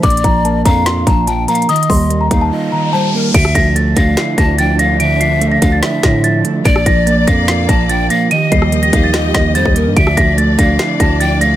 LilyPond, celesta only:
\new Staff \with { instrumentName = "Celesta" } { \time 4/4 \key d \minor \tempo 4 = 145 d'''8 bes''8 a''8 bes''8 c'''8 bes''8 a''8 bes''8 | ees'''8 c'''8. bes''8 a''16 r8 bes''8 a''8 r8 | d''''8 bes'''8 a'''8 bes'''8 c''''8 bes'''8 a'''8 bes'''8 | d''''8 c''''8. bes'''8 a'''16 r8 bes'''8 a'''8 r8 |
d''''8 bes'''8 a'''8 bes'''8 c''''8 bes'''8 a'''8 bes'''8 | ees''''8 c''''8. bes'''8 a'''16 r8 bes'''8 a'''8 r8 | d''''8 bes'''8 a'''8 bes'''8 c''''8 bes'''8 a'''8 bes'''8 | }